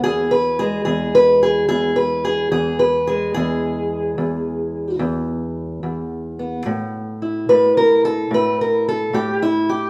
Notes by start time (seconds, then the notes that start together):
0.04 E2 G#4
0.31 B4
0.59 G#3 G#4
0.85 E2 G#4
1.15 B4
1.43 G#4
1.69 E2 G#4
1.96 B4
2.25 G#4
2.51 E2 G#4
2.79 B4
3.07 G#3 G#4
3.34 E2 G#4
4.18 E2
4.99 E2
5.83 E2
6.39 B3
6.66 A2
7.22 E4
7.49 A2 B4
7.77 A#4
8.05 A4
8.31 A2 B4
8.61 A#4
8.89 A4
9.13 A2 G4
9.42 E4
9.69 G4